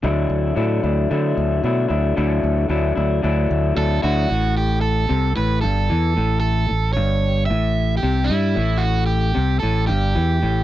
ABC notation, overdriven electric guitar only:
X:1
M:4/4
L:1/8
Q:1/4=112
K:D
V:1 name="Overdriven electric guitar"
z8 | z6 A F- | F G A2 B A3 | A2 c2 e2 G E- |
E F G2 A G3 |]